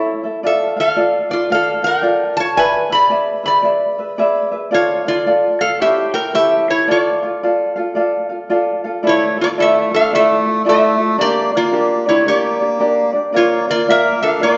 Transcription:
Already playing: resonator guitar played with a steel bar E4 C#5, ukulele E4 A4 C#5 E5
0.23 ukulele E4 A4 E5
0.43 ukulele F4 A4 D5 F5, resonator guitar played with a steel bar A4 E5
0.77 ukulele F4 A4 F5, resonator guitar played with a steel bar F5
0.81 resonator guitar played with a steel bar A4
0.96 ukulele F4 A4 D5 F5
1.30 ukulele F4 A4 F5, resonator guitar played with a steel bar F4 D5
1.50 ukulele F4 A4 D5 F5, resonator guitar played with a steel bar F5
1.55 resonator guitar played with a steel bar A4
1.82 ukulele F4 A4 F5, resonator guitar played with a steel bar G5
1.87 resonator guitar played with a steel bar A#4
2.02 ukulele F4 A4 D5 F5
2.37 ukulele F4 A4 F5, resonator guitar played with a steel bar C#5 A5
2.56 ukulele G#4 B4 D5 E5, resonator guitar played with a steel bar B4 G#5
2.90 ukulele G#4 B4 E5, resonator guitar played with a steel bar B5
2.95 resonator guitar played with a steel bar D5
3.10 ukulele G#4 B4 D5 E5
3.44 ukulele G#4 B4 E5, resonator guitar played with a steel bar B5
3.48 resonator guitar played with a steel bar D5
3.62 ukulele G#4 B4 D5 E5
3.98 ukulele G#4 B4 E5
4.18 ukulele G#4 B4 D5 E5
4.52 ukulele G#4 B4 E5
4.71 ukulele F4 A4 D5 F5, resonator guitar played with a steel bar F4 C#5
5.05 ukulele F4 A4 F5, resonator guitar played with a steel bar F4 D5
5.26 ukulele F4 A4 D5 F5
5.61 ukulele F4 A4 F5, resonator guitar played with a steel bar A4 F5
5.80 ukulele E4 G4 A4 C#5, resonator guitar played with a steel bar G4 E5
6.14 ukulele E4 G4 A4, resonator guitar played with a steel bar A#4 G5
6.34 ukulele E4 G4 A4 C#5, resonator guitar played with a steel bar G4 E5
6.68 ukulele E4 G4 A4, resonator guitar played with a steel bar E4 C#5
6.88 ukulele F4 A4 D5 F5, resonator guitar played with a steel bar F4 D5
7.23 ukulele F4 A4 F5
7.43 ukulele F4 A4 D5 F5
7.76 ukulele F4 A4 F5
7.95 ukulele F4 A4 D5 F5
8.29 ukulele F4 A4 F5
8.50 ukulele F4 A4 D5 F5
8.84 ukulele F4 A4 F5
9.03 ukulele E4 F4 A4 D5
9.07 melodica A3, resonator guitar played with a steel bar E4 C#5
9.37 ukulele E4 F4 A4
9.41 melodica A#3, resonator guitar played with a steel bar F4 D5
9.58 ukulele E4 F4 A4 D5, resonator guitar played with a steel bar A4
9.62 melodica A3, resonator guitar played with a steel bar E5
9.91 ukulele E4 F4 A4, resonator guitar played with a steel bar A4
9.96 melodica D4, resonator guitar played with a steel bar F5
10.12 melodica A3, ukulele E4 F4 A4 D5, resonator guitar played with a steel bar A4 E5
10.46 ukulele E4 F4 A4
10.65 melodica A3, ukulele E4 F4 A4 D5
10.69 resonator guitar played with a steel bar A4 E5
10.98 ukulele E4 F4 A4
11.18 melodica A#3, ukulele D4 G4 A#4 D5, resonator guitar played with a steel bar D5
11.22 resonator guitar played with a steel bar G4
11.51 ukulele D4 G4 D5
11.56 melodica A#3, resonator guitar played with a steel bar F4 D5
11.72 ukulele D4 G4 A#4 D5
12.06 melodica A3, ukulele D4 G4 D5, resonator guitar played with a steel bar E4 C#5
12.27 melodica A#3, ukulele D4 G4 A#4 D5, resonator guitar played with a steel bar G4 D5
12.60 ukulele D4 G4 D5
12.79 ukulele D4 G4 A#4 D5
13.13 ukulele D4 G4 D5
13.32 melodica A#3, ukulele F4 A#4 D5 F5, resonator guitar played with a steel bar C#5
13.37 resonator guitar played with a steel bar F4
13.68 melodica A#3, ukulele F4 A#4 F5, resonator guitar played with a steel bar F4 D5
13.88 melodica A#3, ukulele F4 A#4 D5 F5, resonator guitar played with a steel bar A#4 E5
14.21 melodica D4, ukulele F4 A#4 F5, resonator guitar played with a steel bar A4 F5
14.40 melodica A#3, ukulele F4 A#4 D5 F5, resonator guitar played with a steel bar F4 D5

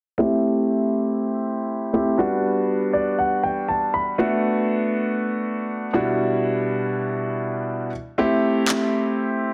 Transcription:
0.18 grand piano A3 C4 E4 G4
1.93 grand piano A3 C4 E4 G4
2.18 grand piano G3 B3 D4 F#4
2.93 grand piano D5
3.19 grand piano F#5
3.43 grand piano G5
3.68 grand piano A5
3.94 grand piano B5
4.18 grand piano A3 B3 D4 F#4
5.93 grand piano B2 G3 D4 E4 F#4
8.18 grand piano A3 C4 E4 G4
8.68 clap

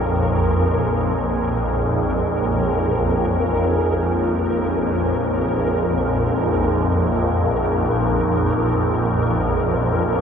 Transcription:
Already playing: synth drone A#1 F2, ambient pad A#3 D#4 G#4 C#5, synth texture A#4
4.73 synth texture A#4

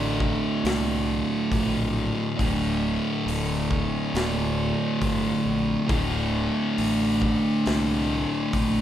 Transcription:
Already playing: fingered electric bass A1, distorted electric guitar D2 A2 D3
0.20 kick
0.64 fingered electric bass C2, snare, open hi-hat
1.51 fingered electric bass A#1, kick, open hi-hat
2.37 fingered electric bass D1, distorted electric guitar D2 A2 D3, kick, open hi-hat
3.26 fingered electric bass D1, open hi-hat
3.71 kick
4.14 fingered electric bass D1, snare, open hi-hat
5.02 fingered electric bass G1, kick, open hi-hat
5.45 fingered electric bass A#1
5.88 fingered electric bass D1, distorted electric guitar D2 A2 D3, kick, open hi-hat
6.78 fingered electric bass A1, open hi-hat
7.22 kick
7.66 fingered electric bass C2, snare, open hi-hat
8.53 fingered electric bass A#1, kick, open hi-hat

